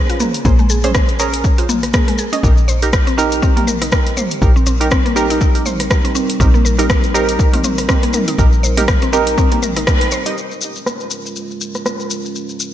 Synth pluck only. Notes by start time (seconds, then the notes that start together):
0.10 F4
0.20 A#3
0.45 A#3
0.59 G#3
0.70 G#4
0.84 C#4
1.20 A#4
1.58 F4
1.69 A#3
1.94 A#3
2.08 G#3
2.19 G#4
2.33 C#4
2.68 C5
3.07 C4
3.18 C4
3.42 C4
3.57 A#3
3.67 A#4
3.81 D#4
4.17 C5
4.56 C4
4.67 C4
4.91 C4
5.06 A#3
5.16 A#4
5.30 D#4
5.66 C5
6.05 C4
6.15 C4
6.40 C4
6.54 A#3
6.65 A#4
6.79 D#4
7.14 C5
7.54 C4
7.64 C4
7.89 C4
8.03 A#3
8.14 A#4
8.28 D#4
8.63 C5
9.02 C4
9.13 C4
9.38 C4
9.52 A#3
9.63 A#4
9.77 D#4
10.12 C5